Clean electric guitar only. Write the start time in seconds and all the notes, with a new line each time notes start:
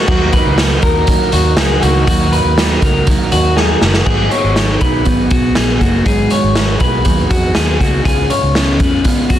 0.08 F#4
0.33 B4
0.83 A#4
1.33 F#4
1.58 G#4
1.83 F#4
2.08 F#4
2.32 B4
2.82 A#4
3.32 F#4
3.57 G#4
3.82 F#4
4.06 G#4
4.31 C#5
4.81 B4
5.31 F#4
5.56 G#4
5.81 F#4
6.06 G#4
6.31 C#5
6.81 B4
7.30 F#4
7.55 G#4
7.80 F#4
8.05 G#4
8.30 C#5
8.80 B4
9.30 F#4